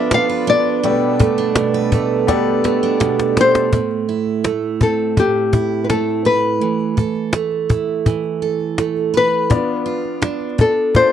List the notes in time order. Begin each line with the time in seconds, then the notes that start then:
Already playing: F3 B3 D4 F4 A4 B4 D5 E5
0.11 B3 F5, cajon slap
0.30 B4, cajon slap
0.47 D4 D5
0.66 cajon slap
0.83 B2 G3 A3 G4 A4 B4 D5, cajon slap
0.89 B3
1.02 cajon slap
1.19 A3, cajon bass
1.38 D4, cajon slap
1.55 B2, cajon slap
1.74 B4, cajon slap
1.92 A3, cajon bass
2.11 cajon slap
2.27 B2 B3 G4 A4 B4 D5, cajon bass, cajon slap
2.47 cajon slap
2.64 A3, cajon slap
2.83 D4, cajon slap
3.00 B2, cajon slap
3.19 cajon slap
3.37 A3 C5, cajon slap
3.55 cajon slap
3.73 A2, cajon bass
3.91 cajon slap
4.09 E4
4.27 cajon slap
4.44 A3, cajon slap
4.63 cajon slap
4.81 C4 A4, cajon bass
5.00 cajon slap
5.17 A2 G4, cajon bass
5.36 cajon slap
5.53 E4, cajon bass
5.72 cajon slap
5.84 B4
5.90 A3 A4, cajon slap
6.09 cajon slap
6.25 B4, cajon slap
6.44 cajon slap
6.61 E3, cajon slap
6.79 cajon slap
6.97 A4, cajon bass
7.15 cajon slap
7.33 A3, cajon slap
7.51 cajon slap
7.69 E4, cajon bass
7.88 cajon slap
8.06 E3, cajon bass
8.24 cajon slap
8.42 A4, cajon slap
8.60 cajon slap
8.78 A3, cajon slap
8.96 cajon slap
9.14 B4, cajon slap
9.32 cajon slap
9.49 B3 D4 F4 D5, cajon bass
9.68 cajon slap
9.86 F4
10.05 cajon slap
10.22 D4, cajon slap
10.41 cajon slap
10.58 D4 A4, cajon bass
10.77 cajon slap
10.95 D4 F4 C5 D5, cajon bass